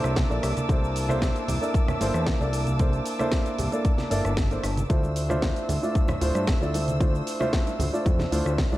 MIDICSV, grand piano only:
0, 0, Header, 1, 2, 480
1, 0, Start_track
1, 0, Tempo, 526316
1, 631, Time_signature, 4, 2, 24, 8
1, 8006, End_track
2, 0, Start_track
2, 0, Title_t, "Grand piano"
2, 0, Program_c, 0, 0
2, 0, Note_on_c, 0, 58, 87
2, 0, Note_on_c, 0, 62, 80
2, 0, Note_on_c, 0, 64, 81
2, 0, Note_on_c, 0, 69, 80
2, 0, Note_on_c, 0, 72, 99
2, 244, Note_off_c, 0, 58, 0
2, 245, Note_off_c, 0, 62, 0
2, 247, Note_off_c, 0, 64, 0
2, 247, Note_off_c, 0, 69, 0
2, 249, Note_off_c, 0, 72, 0
2, 268, Note_on_c, 0, 58, 74
2, 269, Note_on_c, 0, 62, 65
2, 273, Note_on_c, 0, 64, 68
2, 275, Note_on_c, 0, 69, 67
2, 278, Note_on_c, 0, 74, 81
2, 600, Note_off_c, 0, 58, 0
2, 600, Note_off_c, 0, 62, 0
2, 602, Note_off_c, 0, 64, 0
2, 603, Note_off_c, 0, 69, 0
2, 605, Note_off_c, 0, 74, 0
2, 625, Note_on_c, 0, 58, 75
2, 627, Note_on_c, 0, 62, 68
2, 630, Note_on_c, 0, 64, 69
2, 633, Note_on_c, 0, 69, 68
2, 634, Note_on_c, 0, 72, 81
2, 963, Note_off_c, 0, 58, 0
2, 964, Note_off_c, 0, 62, 0
2, 965, Note_off_c, 0, 64, 0
2, 967, Note_off_c, 0, 69, 0
2, 967, Note_off_c, 0, 72, 0
2, 991, Note_on_c, 0, 58, 95
2, 993, Note_on_c, 0, 62, 86
2, 997, Note_on_c, 0, 64, 86
2, 998, Note_on_c, 0, 69, 87
2, 1000, Note_on_c, 0, 72, 105
2, 1444, Note_off_c, 0, 58, 0
2, 1445, Note_off_c, 0, 62, 0
2, 1446, Note_off_c, 0, 64, 0
2, 1447, Note_off_c, 0, 69, 0
2, 1448, Note_off_c, 0, 72, 0
2, 1471, Note_on_c, 0, 58, 74
2, 1473, Note_on_c, 0, 62, 71
2, 1475, Note_on_c, 0, 64, 69
2, 1476, Note_on_c, 0, 69, 71
2, 1480, Note_on_c, 0, 74, 86
2, 1801, Note_off_c, 0, 58, 0
2, 1802, Note_off_c, 0, 62, 0
2, 1803, Note_off_c, 0, 64, 0
2, 1803, Note_off_c, 0, 69, 0
2, 1805, Note_off_c, 0, 74, 0
2, 1826, Note_on_c, 0, 58, 87
2, 1830, Note_on_c, 0, 62, 80
2, 1830, Note_on_c, 0, 64, 81
2, 1833, Note_on_c, 0, 69, 79
2, 1837, Note_on_c, 0, 72, 96
2, 2163, Note_off_c, 0, 58, 0
2, 2165, Note_off_c, 0, 62, 0
2, 2165, Note_off_c, 0, 64, 0
2, 2167, Note_off_c, 0, 69, 0
2, 2169, Note_off_c, 0, 72, 0
2, 2189, Note_on_c, 0, 58, 74
2, 2193, Note_on_c, 0, 62, 66
2, 2194, Note_on_c, 0, 64, 69
2, 2199, Note_on_c, 0, 69, 67
2, 2199, Note_on_c, 0, 74, 81
2, 2520, Note_off_c, 0, 58, 0
2, 2522, Note_off_c, 0, 62, 0
2, 2523, Note_off_c, 0, 64, 0
2, 2525, Note_off_c, 0, 69, 0
2, 2525, Note_off_c, 0, 74, 0
2, 2546, Note_on_c, 0, 58, 72
2, 2548, Note_on_c, 0, 62, 67
2, 2550, Note_on_c, 0, 64, 67
2, 2551, Note_on_c, 0, 69, 69
2, 2553, Note_on_c, 0, 72, 85
2, 2883, Note_off_c, 0, 58, 0
2, 2884, Note_off_c, 0, 62, 0
2, 2885, Note_off_c, 0, 64, 0
2, 2886, Note_off_c, 0, 69, 0
2, 2887, Note_off_c, 0, 72, 0
2, 2911, Note_on_c, 0, 58, 92
2, 2916, Note_on_c, 0, 62, 86
2, 2917, Note_on_c, 0, 64, 86
2, 2920, Note_on_c, 0, 69, 85
2, 2921, Note_on_c, 0, 72, 105
2, 3363, Note_off_c, 0, 58, 0
2, 3366, Note_off_c, 0, 62, 0
2, 3367, Note_off_c, 0, 64, 0
2, 3368, Note_off_c, 0, 69, 0
2, 3369, Note_off_c, 0, 72, 0
2, 3389, Note_on_c, 0, 58, 76
2, 3390, Note_on_c, 0, 62, 71
2, 3394, Note_on_c, 0, 64, 69
2, 3395, Note_on_c, 0, 69, 69
2, 3399, Note_on_c, 0, 74, 85
2, 3720, Note_off_c, 0, 58, 0
2, 3721, Note_off_c, 0, 62, 0
2, 3723, Note_off_c, 0, 64, 0
2, 3723, Note_off_c, 0, 69, 0
2, 3725, Note_off_c, 0, 74, 0
2, 3742, Note_on_c, 0, 58, 91
2, 3745, Note_on_c, 0, 62, 85
2, 3745, Note_on_c, 0, 64, 86
2, 3748, Note_on_c, 0, 69, 83
2, 3752, Note_on_c, 0, 74, 101
2, 3929, Note_off_c, 0, 58, 0
2, 3930, Note_off_c, 0, 64, 0
2, 3931, Note_off_c, 0, 62, 0
2, 3932, Note_off_c, 0, 69, 0
2, 3934, Note_off_c, 0, 74, 0
2, 4112, Note_on_c, 0, 58, 71
2, 4113, Note_on_c, 0, 62, 65
2, 4114, Note_on_c, 0, 64, 64
2, 4116, Note_on_c, 0, 69, 64
2, 4119, Note_on_c, 0, 72, 77
2, 4222, Note_off_c, 0, 58, 0
2, 4222, Note_off_c, 0, 62, 0
2, 4223, Note_off_c, 0, 64, 0
2, 4224, Note_off_c, 0, 69, 0
2, 4226, Note_off_c, 0, 72, 0
2, 4462, Note_on_c, 0, 57, 75
2, 4464, Note_on_c, 0, 62, 69
2, 4467, Note_on_c, 0, 64, 68
2, 4470, Note_on_c, 0, 65, 69
2, 4471, Note_on_c, 0, 72, 81
2, 4801, Note_off_c, 0, 57, 0
2, 4802, Note_off_c, 0, 62, 0
2, 4804, Note_off_c, 0, 64, 0
2, 4805, Note_off_c, 0, 65, 0
2, 4806, Note_off_c, 0, 72, 0
2, 4825, Note_on_c, 0, 57, 94
2, 4828, Note_on_c, 0, 62, 84
2, 4832, Note_on_c, 0, 64, 86
2, 4834, Note_on_c, 0, 65, 88
2, 4836, Note_on_c, 0, 72, 103
2, 5280, Note_off_c, 0, 57, 0
2, 5282, Note_off_c, 0, 62, 0
2, 5284, Note_off_c, 0, 64, 0
2, 5285, Note_off_c, 0, 65, 0
2, 5286, Note_off_c, 0, 72, 0
2, 5311, Note_on_c, 0, 57, 74
2, 5311, Note_on_c, 0, 62, 70
2, 5314, Note_on_c, 0, 64, 70
2, 5317, Note_on_c, 0, 65, 70
2, 5317, Note_on_c, 0, 74, 85
2, 5641, Note_off_c, 0, 57, 0
2, 5641, Note_off_c, 0, 62, 0
2, 5643, Note_off_c, 0, 64, 0
2, 5644, Note_off_c, 0, 65, 0
2, 5644, Note_off_c, 0, 74, 0
2, 5661, Note_on_c, 0, 57, 89
2, 5664, Note_on_c, 0, 62, 82
2, 5667, Note_on_c, 0, 64, 79
2, 5667, Note_on_c, 0, 65, 78
2, 5671, Note_on_c, 0, 72, 95
2, 6001, Note_off_c, 0, 57, 0
2, 6003, Note_off_c, 0, 62, 0
2, 6004, Note_off_c, 0, 64, 0
2, 6004, Note_off_c, 0, 65, 0
2, 6006, Note_off_c, 0, 72, 0
2, 6028, Note_on_c, 0, 57, 73
2, 6030, Note_on_c, 0, 62, 67
2, 6033, Note_on_c, 0, 64, 68
2, 6035, Note_on_c, 0, 65, 66
2, 6038, Note_on_c, 0, 74, 79
2, 6360, Note_off_c, 0, 57, 0
2, 6361, Note_off_c, 0, 62, 0
2, 6362, Note_off_c, 0, 64, 0
2, 6363, Note_off_c, 0, 65, 0
2, 6365, Note_off_c, 0, 74, 0
2, 6385, Note_on_c, 0, 57, 75
2, 6386, Note_on_c, 0, 62, 70
2, 6390, Note_on_c, 0, 64, 69
2, 6391, Note_on_c, 0, 65, 68
2, 6395, Note_on_c, 0, 72, 82
2, 6723, Note_off_c, 0, 57, 0
2, 6723, Note_off_c, 0, 62, 0
2, 6725, Note_off_c, 0, 64, 0
2, 6726, Note_off_c, 0, 65, 0
2, 6728, Note_off_c, 0, 72, 0
2, 6748, Note_on_c, 0, 57, 95
2, 6751, Note_on_c, 0, 62, 85
2, 6752, Note_on_c, 0, 64, 89
2, 6754, Note_on_c, 0, 65, 88
2, 6756, Note_on_c, 0, 72, 107
2, 7202, Note_off_c, 0, 57, 0
2, 7204, Note_off_c, 0, 62, 0
2, 7204, Note_off_c, 0, 64, 0
2, 7205, Note_off_c, 0, 65, 0
2, 7206, Note_off_c, 0, 72, 0
2, 7229, Note_on_c, 0, 57, 78
2, 7231, Note_on_c, 0, 62, 69
2, 7234, Note_on_c, 0, 64, 72
2, 7236, Note_on_c, 0, 65, 70
2, 7237, Note_on_c, 0, 74, 84
2, 7560, Note_off_c, 0, 57, 0
2, 7561, Note_off_c, 0, 62, 0
2, 7563, Note_off_c, 0, 64, 0
2, 7564, Note_off_c, 0, 65, 0
2, 7564, Note_off_c, 0, 74, 0
2, 7583, Note_on_c, 0, 57, 88
2, 7586, Note_on_c, 0, 62, 83
2, 7590, Note_on_c, 0, 64, 78
2, 7590, Note_on_c, 0, 65, 84
2, 7593, Note_on_c, 0, 72, 97
2, 7922, Note_off_c, 0, 57, 0
2, 7923, Note_off_c, 0, 62, 0
2, 7925, Note_off_c, 0, 64, 0
2, 7925, Note_off_c, 0, 65, 0
2, 7927, Note_off_c, 0, 72, 0
2, 7944, Note_on_c, 0, 57, 74
2, 7949, Note_on_c, 0, 62, 67
2, 7951, Note_on_c, 0, 64, 68
2, 7952, Note_on_c, 0, 65, 68
2, 7956, Note_on_c, 0, 74, 81
2, 8006, Note_off_c, 0, 57, 0
2, 8006, Note_off_c, 0, 62, 0
2, 8006, Note_off_c, 0, 64, 0
2, 8006, Note_off_c, 0, 65, 0
2, 8006, Note_off_c, 0, 74, 0
2, 8006, End_track
0, 0, End_of_file